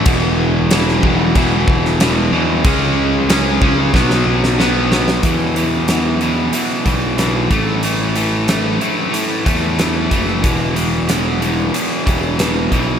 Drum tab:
CC |x---x---x---x---|x---x-----------|----------------|----------------|
HH |----------------|----------------|x-x-x-x-x-x-x-x-|x-x-x-x-x-x-x-x-|
SD |----oo-----oo---|----o---oo-oo-oo|----o-------o---|----o-------o---|
BD |o-----o-o-o-----|o-----o-o-------|o---------o---o-|----------o---o-|

CC |----------------|
HH |x-x-x-x-x-x-x-x-|
SD |----o-------o---|
BD |o---------o---o-|